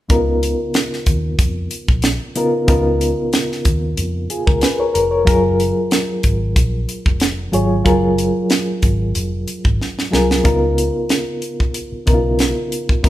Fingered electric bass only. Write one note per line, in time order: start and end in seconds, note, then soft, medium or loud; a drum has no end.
0.10 0.54 C#2 medium
1.07 1.35 D#2 medium
1.39 1.67 F2 medium
1.89 2.17 A#1 medium
2.68 3.12 C#2 medium
3.66 3.94 D#2 medium
3.98 4.26 F2 medium
4.47 4.61 C#2 medium
4.95 5.23 F1 medium
5.28 5.71 F#1 medium
6.24 6.52 G#1 medium
6.56 6.85 A#1 medium
7.06 7.48 F1 medium
7.53 7.82 G#1 medium
7.86 8.29 F#1 medium
8.83 9.11 G#1 medium
9.16 9.44 F1 medium
9.65 9.78 G#1 medium
10.13 10.41 C2 medium
10.45 10.89 C#2 medium
11.92 muted fingered electric bass stroke soft
12.08 12.51 B1 medium
13.04 13.09 C#2 medium